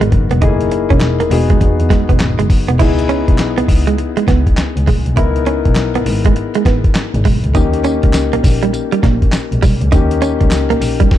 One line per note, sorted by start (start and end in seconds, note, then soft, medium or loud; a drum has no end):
0.00 0.10 G#1 medium
0.00 0.08 G#3 medium
0.00 0.38 B3 medium
0.00 0.39 D#4 medium
0.00 0.39 F#4 medium
0.00 0.40 A#4 medium
0.00 closed hi-hat medium
0.12 0.28 F#1 medium
0.12 muted clean electric guitar stroke soft
0.12 kick medium
0.12 closed hi-hat medium
0.31 0.41 E1 loud
0.31 0.38 B3 medium
0.31 closed hi-hat medium
0.42 0.82 F#1 medium
0.42 0.50 A3 medium
0.42 0.54 D#4 medium
0.42 1.29 D#4 medium
0.42 1.31 E4 medium
0.42 1.31 G#4 medium
0.42 kick loud
0.42 closed hi-hat medium
0.48 1.34 A#3 medium
0.61 closed hi-hat medium
0.71 muted clean electric guitar stroke soft
0.71 closed hi-hat medium
0.90 0.99 E1 medium
0.90 0.98 C#4 medium
0.90 kick loud
0.90 closed hi-hat soft
1.00 snare loud
1.00 clap medium
1.00 closed hi-hat medium
1.20 1.28 E1 soft
1.20 1.27 A#3 medium
1.20 closed hi-hat medium
1.30 1.46 E1 loud
1.30 2.76 B3 medium
1.30 2.77 D#4 medium
1.30 2.77 F#4 medium
1.30 2.77 G#4 medium
1.30 muted clean electric guitar stroke soft
1.30 open hi-hat medium
1.50 1.57 G#3 medium
1.50 kick loud
1.50 closed hi-hat medium
1.61 1.76 E2 loud
1.61 muted clean electric guitar stroke soft
1.61 kick loud
1.61 closed hi-hat medium
1.80 1.89 E2 medium
1.80 closed hi-hat medium
1.90 2.03 G#3 medium
1.90 kick loud
1.90 snare medium
1.90 closed hi-hat medium
2.09 2.18 E1 medium
2.09 2.16 B3 medium
2.09 kick medium
2.09 closed hi-hat soft
2.20 2.36 G#1 medium
2.20 snare loud
2.20 clap loud
2.20 closed hi-hat medium
2.39 2.48 F#1 medium
2.39 2.46 G#3 medium
2.39 closed hi-hat medium
2.50 muted clean electric guitar stroke soft
2.50 kick loud
2.50 open hi-hat medium
2.68 2.78 E1 medium
2.68 2.76 B3 medium
2.68 closed hi-hat medium
2.79 3.20 C#2 medium
2.79 5.13 B3 medium
2.79 5.13 D#4 medium
2.79 2.92 E4 medium
2.79 5.14 E4 medium
2.79 5.14 G#4 medium
2.79 kick loud
2.79 closed hi-hat medium
2.79 crash loud
2.99 closed hi-hat medium
3.09 3.22 C#4 medium
3.09 closed hi-hat medium
3.28 3.37 B1 medium
3.28 muted clean electric guitar stroke soft
3.28 kick medium
3.28 closed hi-hat soft
3.38 snare loud
3.38 clap loud
3.38 closed hi-hat medium
3.58 3.66 C#2 soft
3.58 3.65 B3 medium
3.58 closed hi-hat medium
3.68 3.84 C#2 medium
3.68 muted clean electric guitar stroke soft
3.68 kick loud
3.68 open hi-hat medium
3.87 3.95 G#3 medium
3.87 closed hi-hat medium
3.98 muted clean electric guitar stroke soft
3.98 closed hi-hat medium
4.17 4.24 G#3 medium
4.17 closed hi-hat medium
4.28 4.52 C#2 medium
4.28 4.40 B3 medium
4.28 kick loud
4.28 snare medium
4.28 closed hi-hat medium
4.47 kick medium
4.47 closed hi-hat soft
4.57 snare loud
4.57 clap medium
4.57 closed hi-hat medium
4.76 4.85 C#2 medium
4.76 closed hi-hat medium
4.87 5.03 A#1 medium
4.87 5.00 G#3 loud
4.87 kick medium
4.87 open hi-hat medium
5.06 5.15 B1 medium
5.06 closed hi-hat soft
5.16 5.57 C#2 medium
5.16 7.50 B3 medium
5.16 7.51 D#4 medium
5.16 5.30 E4 medium
5.16 7.51 E4 medium
5.16 7.51 A#4 medium
5.16 kick loud
5.16 closed hi-hat medium
5.36 closed hi-hat medium
5.46 5.59 C#4 medium
5.46 closed hi-hat medium
5.65 5.75 B1 medium
5.65 muted clean electric guitar stroke soft
5.65 kick medium
5.65 closed hi-hat soft
5.75 snare loud
5.75 clap loud
5.75 closed hi-hat medium
5.95 6.04 G#1 soft
5.95 6.03 B3 medium
5.95 closed hi-hat medium
6.06 6.22 G#1 medium
6.06 muted clean electric guitar stroke soft
6.06 open hi-hat medium
6.25 6.33 G#3 medium
6.25 kick loud
6.25 closed hi-hat medium
6.36 muted clean electric guitar stroke soft
6.36 closed hi-hat medium
6.55 6.62 G#3 medium
6.55 closed hi-hat medium
6.65 6.90 G#1 medium
6.65 6.78 B3 medium
6.65 kick loud
6.65 snare medium
6.65 closed hi-hat medium
6.84 kick loud
6.84 closed hi-hat soft
6.95 snare loud
6.95 clap loud
6.95 closed hi-hat medium
7.14 7.23 G#1 loud
7.14 closed hi-hat medium
7.25 7.41 B1 loud
7.25 7.38 G#3 medium
7.25 kick loud
7.25 open hi-hat medium
7.44 7.53 C#2 medium
7.44 closed hi-hat medium
7.54 7.95 D#2 loud
7.54 9.88 A#3 medium
7.54 9.88 C#4 medium
7.54 7.67 D#4 medium
7.54 9.89 D#4 medium
7.54 9.89 G4 medium
7.54 kick loud
7.54 closed hi-hat medium
7.54 tambourine medium
7.73 closed hi-hat medium
7.84 7.97 C#4 medium
7.84 closed hi-hat medium
7.84 tambourine medium
8.03 8.12 C#2 medium
8.03 muted clean electric guitar stroke soft
8.03 kick loud
8.03 closed hi-hat medium
8.13 snare loud
8.13 clap loud
8.13 closed hi-hat medium
8.13 tambourine loud
8.33 8.41 A#1 medium
8.33 8.40 A#3 medium
8.33 closed hi-hat medium
8.44 8.59 A#1 medium
8.44 muted clean electric guitar stroke soft
8.44 kick loud
8.44 open hi-hat loud
8.44 tambourine medium
8.63 8.70 G3 medium
8.63 closed hi-hat medium
8.73 muted clean electric guitar stroke soft
8.73 closed hi-hat medium
8.73 tambourine medium
8.92 9.00 G3 medium
8.92 closed hi-hat medium
9.03 9.28 A#1 medium
9.03 9.16 A#3 medium
9.03 kick loud
9.03 snare medium
9.03 closed hi-hat medium
9.22 kick medium
9.22 closed hi-hat soft
9.32 snare loud
9.32 clap loud
9.32 closed hi-hat medium
9.32 tambourine medium
9.52 9.61 A#1 medium
9.52 closed hi-hat medium
9.62 9.78 B1 medium
9.62 9.75 G3 medium
9.62 kick loud
9.62 open hi-hat medium
9.62 tambourine medium
9.81 9.90 C#2 loud
9.81 closed hi-hat medium
9.92 10.33 D#2 loud
9.92 11.09 A#3 medium
9.92 11.09 C#4 medium
9.92 10.05 D#4 medium
9.92 11.09 D#4 medium
9.92 11.10 G4 medium
9.92 kick loud
9.92 closed hi-hat medium
9.92 tambourine medium
10.11 closed hi-hat medium
10.22 10.34 C#4 medium
10.22 closed hi-hat medium
10.22 tambourine medium
10.41 10.50 C#2 loud
10.41 muted clean electric guitar stroke soft
10.41 kick medium
10.41 closed hi-hat soft
10.51 snare loud
10.51 clap loud
10.51 closed hi-hat medium
10.51 tambourine loud
10.70 10.79 A#1 soft
10.70 10.78 A#3 medium
10.70 closed hi-hat medium
10.81 10.97 A#1 medium
10.81 muted clean electric guitar stroke soft
10.81 open hi-hat loud
10.81 tambourine medium
11.00 11.07 G3 medium
11.00 kick loud
11.00 closed hi-hat medium
11.11 kick loud
11.11 snare medium